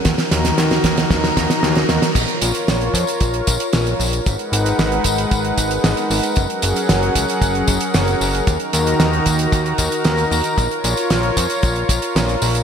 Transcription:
<<
  \new Staff \with { instrumentName = "Analog synth pad" } { \time 4/4 \key ais \phrygian \tempo 4 = 114 <dis dis' fis' ais' ais''>1 | <eis' ais' cis''>1 | <gis dis' ais' b' fis''>1 | <fis cis' gis' fis''>1 |
<dis dis' fis' ais''>1 | <eis' cis''>1 | }
  \new Staff \with { instrumentName = "Analog synth bass" } { \clef bass \time 4/4 \key ais \phrygian dis,8 dis,8 dis,8 dis,8 dis,8 dis,8 dis,8 dis,8 | ais,,8 ais,,8 ais,,8 eis,8 ais,,8 ais,,8 ais,,8 ais,,8 | gis,,8 gis,,8 gis,,8 gis,,8 gis,,8 gis,,8 gis,,8 gis,,8 | fis,,8 fis,,8 fis,,8 cis,8 fis,,8 fis,,8 fis,,8 fis,,8 |
dis,8 dis,8 dis,8 dis,8 dis,8 dis,8 dis,8 dis,8 | ais,,8 ais,,8 ais,,8 eis,8 ais,,8 ais,,8 ais,,8 ais,,8 | }
  \new DrumStaff \with { instrumentName = "Drums" } \drummode { \time 4/4 <hh bd sn>16 <hh sn>16 <hh sn>16 <hh sn>16 <hh sn>16 <hh sn>16 <hh bd sn>16 <hh sn>16 <hh bd sn>16 <hh sn>16 <hh bd sn>16 <hh sn>16 <hh sn>16 <hh sn>16 <hh sn>16 <hh sn>16 | <cymc hh bd tamb>16 hh16 <hh tamb>16 <hh tamb>16 <hh sn tamb>16 hh16 <hh bd tamb>16 <hh tamb>16 <hh bd tamb>16 hh16 <hh bd tamb>16 <hh tamb>16 <hh sn tamb>16 <hh tamb>16 <hho tamb>16 <hh tamb>16 | <hh bd tamb>16 hh16 <hh tamb>16 <hh tamb>16 <hh sn tamb>16 hh16 <hh bd tamb>16 <hh tamb>16 <hh bd tamb>16 hh16 <hh bd tamb>16 <hh tamb>16 <hh sn tamb>16 <hh tamb>16 <hho tamb>16 <hh tamb>16 | <hh bd tamb>16 hh16 <hh tamb>16 <hh tamb>16 <hh sn tamb>16 hh16 <hh bd tamb>16 <hh tamb>16 <hh bd tamb>16 hh16 <hh bd tamb>16 <hh tamb>16 <hh sn tamb>16 <hh tamb>16 <hho tamb>16 <hh tamb>16 |
<hh bd tamb>16 hh16 <hh tamb>16 <hh tamb>16 <hh sn tamb>16 hh16 <hh bd tamb>16 <hh tamb>16 <hh bd tamb>16 hh16 <hh bd tamb>16 <hh tamb>16 <hh sn tamb>16 <hh tamb>16 <hho tamb>16 <hh tamb>16 | <hh bd tamb>16 hh16 <hh tamb>16 <hh tamb>16 <hh sn tamb>16 hh16 <hh bd tamb>16 <hh tamb>16 <hh bd tamb>16 hh16 <hh bd tamb>16 <hh tamb>16 <hh sn tamb>16 <hh tamb>16 <hho tamb>16 <hh tamb>16 | }
>>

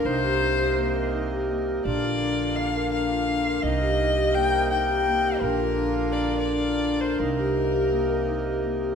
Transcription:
<<
  \new Staff \with { instrumentName = "Violin" } { \time 5/4 \key c \dorian \tempo 4 = 168 c''2. r2 | d''2 f''4 f''2 | ees''2 g''4 g''2 | bes'2 d''8. d''4.~ d''16 c''8 |
bes'1 r4 | }
  \new Staff \with { instrumentName = "Marimba" } { \time 5/4 \key c \dorian ees'8 g'8 ees'8 g'8 bes8 bes'8 ees'8 g'8 bes8 g'8 | d'8 f'8 d'8 r8 d'8 bes'8 d'8 f'8 d'8 bes'8 | ees'8 g'8 ees'8 g'8 bes8 bes'8 ees'8 g'8 bes8 g'8 | d'8 f'8 d'8 r8 d'8 bes'8 d'8 f'8 d'8 bes'8 |
ees'8 g'8 ees'8 g'8 bes8 bes'8 ees'8 g'8 bes8 g'8 | }
  \new Staff \with { instrumentName = "Harmonium" } { \time 5/4 \key c \dorian << { <c ees'>1~ <c ees'>4 | <d f'>1~ <d f'>4 | <c ees'>1~ <c ees'>4 | <d f'>1~ <d f'>4 |
<c ees'>1~ <c ees'>4 | } \\ { bes1~ bes4 | bes1~ bes4~ | bes1~ bes4~ | bes1~ bes4~ |
bes1~ bes4 | } >> }
  \new Staff \with { instrumentName = "Upright bass" } { \clef bass \time 5/4 \key c \dorian c,1~ c,4 | bes,,1~ bes,,4 | c,1~ c,4 | bes,,1~ bes,,4 |
c,1~ c,4 | }
>>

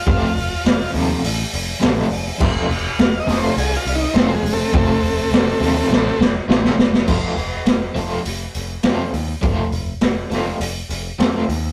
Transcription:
<<
  \new Staff \with { instrumentName = "Transistor combo organ" } { \time 4/4 \key f \mixolydian \tempo 4 = 102 f'4. r2 r8 | r4 \tuplet 3/2 { f''8 ees''8 c''8 aes'8 f'8 ees'8 c'8 aes8 <c a>8~ } | <c a>2~ <c a>8 r4. | r1 |
r1 | }
  \new Staff \with { instrumentName = "Overdriven electric guitar" } { \time 4/4 \key f \mixolydian <f, c f a c' f'>8 r4 <f, c f a c' f'>8 r4 <f, c f a c' f'>8 r8 | <f, c f a c' f'>8 r4 <f, c f a c' f'>8 r4 <f, c f a c' f'>8 r8 | <f, c f a c' f'>8 r4 <f, c f a c' f'>8 r4 <f, c f a c' f'>8 r8 | <f a c' f'>8 r4 <f a c' f'>8 r4 <f a c' f'>8 r8 |
<f a c' f'>8 r4 <f a c' f'>8 r4 <f a c' f'>8 r8 | }
  \new Staff \with { instrumentName = "Picked electric bass" } { \clef bass \time 4/4 \key f \mixolydian f,,8 f,,8 f,,8 ees,8 a,,8 f,,8 a,,8 f,,8 | f,,8 f,,8 f,,8 f,,8 c,8 c,8 f,,8 f,,8 | f,,8 f,,8 f,,8 ees,8 a,,8 f,,8 a,,8 f,,8 | f,,8 f,,8 f,,8 f,,8 f,,8 f,,8 f,8 ees,8 |
f,,8 f,,8 f,,8 f,,8 f,,8 f,,8 f,8 ees,8 | }
  \new DrumStaff \with { instrumentName = "Drums" } \drummode { \time 4/4 <hho bd>8 hho8 <hho sn>8 hho8 hho8 hho8 <hho sn>8 hho8 | <cymc bd>8 hho8 <hho sn>8 <hho sn>8 hho8 hho8 <hho sn>8 hho8 | <hho bd>8 hho8 <hho sn>8 hho8 sn8 sn8 sn16 sn16 sn16 sn16 | <cymc bd>8 hho8 <hho sn>8 hho8 hho8 hho8 <hho sn>8 hho8 |
<hho bd>8 hho8 <hho sn>8 <hho sn>8 hho8 hho8 <hho sn>8 hho8 | }
>>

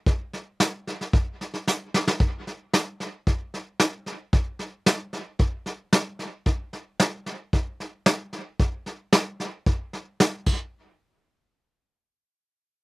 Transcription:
\new DrumStaff \with { instrumentName = "Drums" } \drummode { \time 4/4 \tempo 4 = 112 <bd sn>8 sn8 <hhp sn>8 sn16 sn16 <bd sn>8 sn16 sn16 <hhp sn>8 sn16 sn16 | <bd sn>8 sn8 <hhp sn>8 sn8 <bd sn>8 sn8 <hhp sn>8 sn8 | <bd sn>8 sn8 <hhp sn>8 sn8 <bd sn>8 sn8 <hhp sn>8 sn8 | <bd sn>8 sn8 <hhp sn>8 sn8 <bd sn>8 sn8 <hhp sn>8 sn8 |
<bd sn>8 sn8 <hhp sn>8 sn8 <bd sn>8 sn8 <hhp sn>8 <cymc bd>8 | r4 r4 r4 r4 | }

